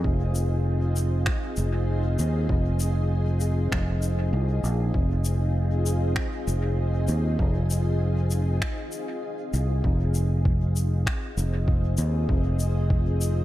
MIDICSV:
0, 0, Header, 1, 4, 480
1, 0, Start_track
1, 0, Key_signature, -4, "minor"
1, 0, Tempo, 612245
1, 34, Time_signature, 4, 2, 24, 8
1, 10540, End_track
2, 0, Start_track
2, 0, Title_t, "Ambient pad"
2, 0, Program_c, 0, 92
2, 0, Note_on_c, 0, 60, 72
2, 0, Note_on_c, 0, 63, 65
2, 0, Note_on_c, 0, 65, 70
2, 0, Note_on_c, 0, 68, 68
2, 0, Note_on_c, 0, 75, 69
2, 7708, Note_off_c, 0, 60, 0
2, 7713, Note_off_c, 0, 65, 0
2, 7714, Note_off_c, 0, 63, 0
2, 7714, Note_off_c, 0, 68, 0
2, 7715, Note_off_c, 0, 75, 0
2, 7717, Note_on_c, 0, 60, 85
2, 7902, Note_on_c, 0, 63, 75
2, 7926, Note_on_c, 0, 65, 82
2, 8164, Note_on_c, 0, 75, 75
2, 8256, Note_on_c, 0, 68, 78
2, 10540, Note_off_c, 0, 60, 0
2, 10540, Note_off_c, 0, 63, 0
2, 10540, Note_off_c, 0, 65, 0
2, 10540, Note_off_c, 0, 68, 0
2, 10540, Note_off_c, 0, 75, 0
2, 10540, End_track
3, 0, Start_track
3, 0, Title_t, "Fingered electric bass"
3, 0, Program_c, 1, 33
3, 34, Note_on_c, 1, 29, 93
3, 974, Note_off_c, 1, 29, 0
3, 1235, Note_on_c, 1, 29, 84
3, 1694, Note_off_c, 1, 29, 0
3, 1715, Note_on_c, 1, 39, 92
3, 1929, Note_off_c, 1, 39, 0
3, 1955, Note_on_c, 1, 29, 97
3, 2894, Note_off_c, 1, 29, 0
3, 2915, Note_on_c, 1, 29, 86
3, 3374, Note_off_c, 1, 29, 0
3, 3394, Note_on_c, 1, 36, 102
3, 3609, Note_off_c, 1, 36, 0
3, 3633, Note_on_c, 1, 34, 94
3, 3848, Note_off_c, 1, 34, 0
3, 3875, Note_on_c, 1, 29, 94
3, 4814, Note_off_c, 1, 29, 0
3, 5075, Note_on_c, 1, 29, 89
3, 5535, Note_off_c, 1, 29, 0
3, 5553, Note_on_c, 1, 39, 95
3, 5768, Note_off_c, 1, 39, 0
3, 5796, Note_on_c, 1, 29, 98
3, 6735, Note_off_c, 1, 29, 0
3, 7475, Note_on_c, 1, 36, 82
3, 7689, Note_off_c, 1, 36, 0
3, 7716, Note_on_c, 1, 29, 98
3, 8655, Note_off_c, 1, 29, 0
3, 8916, Note_on_c, 1, 29, 89
3, 9375, Note_off_c, 1, 29, 0
3, 9394, Note_on_c, 1, 39, 98
3, 9609, Note_off_c, 1, 39, 0
3, 9636, Note_on_c, 1, 29, 96
3, 10540, Note_off_c, 1, 29, 0
3, 10540, End_track
4, 0, Start_track
4, 0, Title_t, "Drums"
4, 34, Note_on_c, 9, 36, 98
4, 113, Note_off_c, 9, 36, 0
4, 273, Note_on_c, 9, 82, 63
4, 352, Note_off_c, 9, 82, 0
4, 753, Note_on_c, 9, 82, 62
4, 832, Note_off_c, 9, 82, 0
4, 988, Note_on_c, 9, 26, 81
4, 995, Note_on_c, 9, 36, 100
4, 1067, Note_off_c, 9, 26, 0
4, 1073, Note_off_c, 9, 36, 0
4, 1226, Note_on_c, 9, 82, 62
4, 1305, Note_off_c, 9, 82, 0
4, 1716, Note_on_c, 9, 82, 54
4, 1794, Note_off_c, 9, 82, 0
4, 1954, Note_on_c, 9, 36, 96
4, 2033, Note_off_c, 9, 36, 0
4, 2192, Note_on_c, 9, 82, 62
4, 2271, Note_off_c, 9, 82, 0
4, 2668, Note_on_c, 9, 82, 58
4, 2746, Note_off_c, 9, 82, 0
4, 2915, Note_on_c, 9, 36, 92
4, 2919, Note_on_c, 9, 26, 81
4, 2993, Note_off_c, 9, 36, 0
4, 2998, Note_off_c, 9, 26, 0
4, 3153, Note_on_c, 9, 82, 64
4, 3231, Note_off_c, 9, 82, 0
4, 3639, Note_on_c, 9, 82, 55
4, 3718, Note_off_c, 9, 82, 0
4, 3875, Note_on_c, 9, 36, 93
4, 3953, Note_off_c, 9, 36, 0
4, 4112, Note_on_c, 9, 82, 63
4, 4190, Note_off_c, 9, 82, 0
4, 4594, Note_on_c, 9, 82, 64
4, 4672, Note_off_c, 9, 82, 0
4, 4829, Note_on_c, 9, 26, 77
4, 4834, Note_on_c, 9, 36, 97
4, 4907, Note_off_c, 9, 26, 0
4, 4913, Note_off_c, 9, 36, 0
4, 5079, Note_on_c, 9, 82, 63
4, 5157, Note_off_c, 9, 82, 0
4, 5548, Note_on_c, 9, 82, 57
4, 5627, Note_off_c, 9, 82, 0
4, 5795, Note_on_c, 9, 36, 95
4, 5873, Note_off_c, 9, 36, 0
4, 6038, Note_on_c, 9, 82, 66
4, 6117, Note_off_c, 9, 82, 0
4, 6511, Note_on_c, 9, 82, 60
4, 6589, Note_off_c, 9, 82, 0
4, 6755, Note_on_c, 9, 36, 101
4, 6757, Note_on_c, 9, 26, 86
4, 6833, Note_off_c, 9, 36, 0
4, 6835, Note_off_c, 9, 26, 0
4, 6991, Note_on_c, 9, 82, 58
4, 7069, Note_off_c, 9, 82, 0
4, 7476, Note_on_c, 9, 82, 60
4, 7554, Note_off_c, 9, 82, 0
4, 7715, Note_on_c, 9, 36, 98
4, 7794, Note_off_c, 9, 36, 0
4, 7952, Note_on_c, 9, 82, 63
4, 8031, Note_off_c, 9, 82, 0
4, 8196, Note_on_c, 9, 36, 104
4, 8274, Note_off_c, 9, 36, 0
4, 8436, Note_on_c, 9, 82, 71
4, 8514, Note_off_c, 9, 82, 0
4, 8675, Note_on_c, 9, 36, 101
4, 8679, Note_on_c, 9, 26, 96
4, 8754, Note_off_c, 9, 36, 0
4, 8757, Note_off_c, 9, 26, 0
4, 8918, Note_on_c, 9, 82, 63
4, 8997, Note_off_c, 9, 82, 0
4, 9155, Note_on_c, 9, 36, 108
4, 9234, Note_off_c, 9, 36, 0
4, 9388, Note_on_c, 9, 82, 65
4, 9466, Note_off_c, 9, 82, 0
4, 9635, Note_on_c, 9, 36, 105
4, 9714, Note_off_c, 9, 36, 0
4, 9873, Note_on_c, 9, 82, 60
4, 9952, Note_off_c, 9, 82, 0
4, 10115, Note_on_c, 9, 36, 105
4, 10194, Note_off_c, 9, 36, 0
4, 10357, Note_on_c, 9, 82, 69
4, 10435, Note_off_c, 9, 82, 0
4, 10540, End_track
0, 0, End_of_file